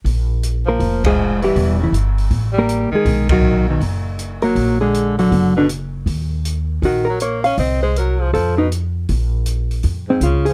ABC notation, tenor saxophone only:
X:1
M:4/4
L:1/8
Q:"Swing" 1/4=159
K:Bbm
V:1 name="Tenor saxophone" clef=bass
z3 F,2 F,2 =E,- | =E, D, z3 =G,2 _E,- | E, ^D,2 =B,, z3 ^F,- | ^F, =D,2 D,2 _C, z2 |
z4 E, G, B, D | C A, G, F, F, =B,, z2 | z4 z A,, D, F, |]